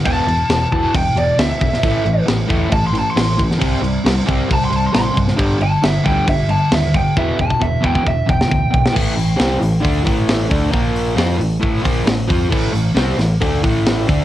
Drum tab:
CC |x-x-x-x-x-x-x-x-|x-x-x-x-x-x-x-x-|x-x-x-x-x-x-x-x-|x-x-x-x-x-x-x-x-|
HH |----------------|----------------|----------------|----------------|
SD |----o-------o--o|----o-------o--o|----o-------o--o|----o-------o---|
BD |o-----o-o-----o-|o-----o-o-----o-|o-----o-o-----o-|o-----o-o-----o-|

CC |----------------|x---------------|----------------|x---------------|
HH |----------------|--o-o-o-o-o-o-o-|o-o-o-o-o-o-o-o-|--o-o-o-o-o-o-o-|
SD |-----------o---o|----o-------o---|----o-------o---|----o-o-----o---|
BD |o-ooo-ooo-o-o-o-|o-------o-o---o-|o-------o-o---o-|o-------o-o---o-|